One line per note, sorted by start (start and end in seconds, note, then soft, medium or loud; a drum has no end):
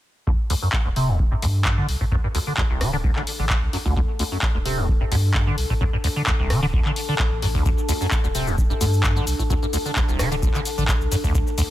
0.27 0.35 D2 loud
0.27 0.31 D2 loud
0.27 11.70 D4 medium
0.27 kick loud
0.50 0.54 D2 loud
0.50 11.70 A4 medium
0.50 open hi-hat loud
0.62 0.68 F#2 medium
0.73 kick loud
0.73 clap loud
0.85 1.36 D1 medium
0.85 0.89 D2 medium
0.85 11.70 A5 medium
0.96 1.10 C3 medium
0.96 open hi-hat medium
1.09 1.17 D2 loud
1.19 kick loud
1.32 1.35 G2 medium
1.42 1.47 D2 loud
1.42 1.82 G2 loud
1.42 open hi-hat loud
1.65 kick loud
1.65 clap loud
1.78 1.87 D3 medium
1.89 1.96 C2 loud
1.89 open hi-hat medium
2.01 2.04 A2 medium
2.01 kick medium
2.12 2.19 D2 loud
2.12 2.16 F#2 medium
2.12 kick loud
2.24 2.28 G2 medium
2.35 2.39 D2 loud
2.35 open hi-hat loud
2.47 2.53 D3 medium
2.57 2.62 D2 loud
2.57 kick loud
2.57 clap loud
2.70 3.09 D1 medium
2.70 2.82 C2 medium
2.81 2.91 D3 loud
2.81 cross-stick medium
2.81 open hi-hat medium
2.93 2.97 D3 loud
3.04 3.11 D2 medium
3.04 kick loud
3.16 3.23 A1 medium
3.16 3.22 D3 medium
3.16 clap soft
3.27 open hi-hat loud
3.39 3.53 A1 loud
3.39 3.45 D3 medium
3.50 kick loud
3.50 clap loud
3.62 3.69 C2 medium
3.73 3.77 F#2 medium
3.73 open hi-hat medium
3.86 3.92 D2 medium
3.86 3.94 D2 loud
3.86 kick medium
3.96 4.04 D2 loud
3.96 4.00 D2 loud
3.96 kick loud
4.19 4.23 D2 medium
4.19 open hi-hat loud
4.32 4.38 F#2 medium
4.42 kick loud
4.42 clap loud
4.55 5.05 D1 medium
4.55 4.58 D2 medium
4.66 4.79 C3 medium
4.66 open hi-hat medium
4.78 4.87 D2 loud
4.89 kick loud
5.01 5.04 G2 medium
5.12 5.16 D2 loud
5.12 5.51 G2 loud
5.12 open hi-hat loud
5.34 kick loud
5.34 clap loud
5.47 5.56 D3 medium
5.58 5.65 C2 medium
5.58 open hi-hat medium
5.70 5.74 A2 medium
5.70 kick medium
5.81 5.88 D2 loud
5.81 5.85 F#2 loud
5.81 kick loud
5.93 5.97 G2 medium
6.04 6.08 D2 loud
6.04 open hi-hat loud
6.16 6.22 D3 medium
6.27 6.31 D2 loud
6.27 kick loud
6.27 clap loud
6.39 6.78 D1 medium
6.39 6.52 C2 medium
6.50 6.60 D3 loud
6.50 cross-stick medium
6.50 open hi-hat medium
6.62 6.66 D3 loud
6.73 6.80 D2 medium
6.73 kick loud
6.85 6.91 D3 medium
6.85 clap soft
6.96 open hi-hat loud
7.09 7.15 D3 medium
7.19 kick loud
7.19 clap loud
7.32 7.59 A1 loud
7.42 7.46 F#2 medium
7.42 open hi-hat medium
7.55 7.64 D2 loud
7.55 kick medium
7.66 7.73 D2 loud
7.66 7.70 D2 loud
7.66 kick loud
7.66 shaker soft
7.78 shaker soft
7.89 7.93 D2 loud
7.89 open hi-hat loud
7.89 shaker medium
8.01 8.07 F#2 medium
8.01 shaker soft
8.11 kick loud
8.11 clap loud
8.11 shaker soft
8.24 8.74 D1 medium
8.24 8.28 D2 medium
8.24 shaker soft
8.35 8.49 C3 medium
8.35 open hi-hat medium
8.35 shaker medium
8.47 8.56 D2 loud
8.47 shaker soft
8.58 kick loud
8.58 shaker soft
8.70 8.74 G2 medium
8.70 shaker soft
8.81 8.85 D2 loud
8.81 9.20 G2 loud
8.81 open hi-hat loud
8.81 shaker medium
8.93 shaker soft
9.03 kick loud
9.03 clap loud
9.03 shaker soft
9.16 9.25 D3 medium
9.16 shaker soft
9.27 9.35 C2 loud
9.27 open hi-hat medium
9.27 shaker medium
9.39 9.43 A2 medium
9.39 kick medium
9.39 shaker soft
9.50 9.58 D2 loud
9.50 9.54 F#2 loud
9.50 kick loud
9.50 shaker soft
9.62 9.66 G2 medium
9.62 shaker soft
9.73 9.77 D2 loud
9.73 open hi-hat loud
9.73 shaker medium
9.85 9.91 D3 medium
9.85 shaker soft
9.96 10.00 D2 loud
9.96 kick loud
9.96 clap loud
9.96 shaker soft
10.09 10.47 D1 medium
10.09 10.21 C2 medium
10.09 shaker soft
10.19 10.29 D3 loud
10.19 cross-stick medium
10.19 open hi-hat medium
10.19 shaker medium
10.32 10.35 D3 loud
10.32 shaker soft
10.42 10.49 D2 medium
10.42 kick loud
10.42 shaker soft
10.54 10.61 A1 medium
10.54 10.61 D3 medium
10.54 clap soft
10.54 shaker soft
10.65 open hi-hat loud
10.65 shaker medium
10.78 10.91 A1 medium
10.78 10.84 D3 medium
10.78 shaker soft
10.88 kick loud
10.88 clap loud
10.88 shaker soft
11.01 11.07 C2 medium
11.01 shaker soft
11.12 11.16 F#2 medium
11.12 open hi-hat medium
11.12 shaker medium
11.24 11.33 D2 loud
11.24 11.31 D2 medium
11.24 kick medium
11.24 shaker soft
11.35 11.39 D2 loud
11.35 11.42 D2 loud
11.35 kick loud
11.35 shaker soft
11.47 shaker soft
11.58 11.62 D2 loud
11.58 open hi-hat loud
11.58 shaker medium